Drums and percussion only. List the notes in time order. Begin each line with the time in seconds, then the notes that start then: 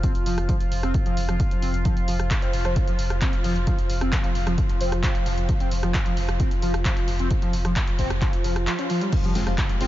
0.03 kick, closed hi-hat
0.15 closed hi-hat
0.26 open hi-hat
0.38 cross-stick, closed hi-hat
0.49 kick, closed hi-hat
0.61 closed hi-hat
0.72 open hi-hat
0.83 cross-stick, closed hi-hat
0.94 kick, closed hi-hat
1.06 closed hi-hat
1.17 open hi-hat
1.29 cross-stick, closed hi-hat
1.40 kick, closed hi-hat
1.51 closed hi-hat
1.62 open hi-hat
1.74 closed hi-hat
1.85 kick, closed hi-hat
1.97 closed hi-hat
2.08 open hi-hat
2.20 cross-stick, closed hi-hat
2.31 kick, clap, closed hi-hat
2.42 closed hi-hat
2.53 open hi-hat
2.65 cross-stick, closed hi-hat
2.76 kick, closed hi-hat
2.88 closed hi-hat
2.99 open hi-hat
3.10 cross-stick, closed hi-hat
3.21 kick, clap, closed hi-hat
3.33 closed hi-hat
3.44 open hi-hat
3.56 closed hi-hat
3.67 kick, closed hi-hat
3.79 closed hi-hat
3.90 open hi-hat
4.01 cross-stick, closed hi-hat
4.12 kick, clap, closed hi-hat
4.24 closed hi-hat
4.35 open hi-hat
4.47 cross-stick, closed hi-hat
4.58 kick, closed hi-hat
4.69 closed hi-hat
4.81 open hi-hat
4.92 cross-stick, closed hi-hat
5.03 kick, clap, closed hi-hat
5.15 closed hi-hat
5.26 open hi-hat
5.38 closed hi-hat
5.49 kick, closed hi-hat
5.60 closed hi-hat
5.71 open hi-hat
5.83 cross-stick, closed hi-hat
5.94 kick, clap, closed hi-hat
6.06 closed hi-hat
6.17 open hi-hat
6.29 cross-stick, closed hi-hat
6.40 kick, closed hi-hat
6.51 closed hi-hat
6.62 open hi-hat
6.74 cross-stick, closed hi-hat
6.85 kick, clap, closed hi-hat
6.97 closed hi-hat
7.08 open hi-hat
7.19 closed hi-hat
7.31 kick, closed hi-hat
7.42 closed hi-hat
7.53 open hi-hat
7.65 cross-stick, closed hi-hat
7.76 kick, clap, closed hi-hat
7.87 closed hi-hat
7.99 kick, open hi-hat
8.10 cross-stick, closed hi-hat
8.22 kick, clap, closed hi-hat
8.33 closed hi-hat
8.44 open hi-hat
8.56 cross-stick, closed hi-hat
8.67 clap, closed hi-hat
8.79 closed hi-hat
8.90 open hi-hat
9.01 closed hi-hat
9.12 kick, closed hi-hat, crash
9.24 closed hi-hat
9.35 open hi-hat
9.47 cross-stick, closed hi-hat
9.58 kick, clap, closed hi-hat
9.69 closed hi-hat
9.81 open hi-hat